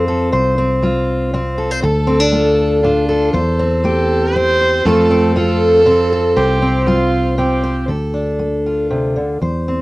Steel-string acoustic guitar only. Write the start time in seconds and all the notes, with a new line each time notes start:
Already playing: C3 C4 F4
0.08 A4
0.32 C3 C5
0.58 C4
0.82 G3 F4
1.34 C3 C4
1.58 A4
1.71 C5
1.82 D3 A4
2.07 C4
2.20 D4
2.32 A3 F4
2.84 A2 D4
3.09 A4
3.33 E3 C5
3.59 C4
3.84 A3 G4
4.35 E3 C4
4.61 C5
4.86 F3 A3 C4 F4 A4
5.11 C4
5.36 A3 F4
5.86 C3 C4
6.12 A4
6.36 C3 C5
6.62 C4
6.87 G3 F4
7.38 C3 C4
7.64 C5
7.88 D3 A4
8.14 D4
8.39 A3
8.66 F4
8.91 C3
9.16 D3
9.42 E3 C5
9.68 C4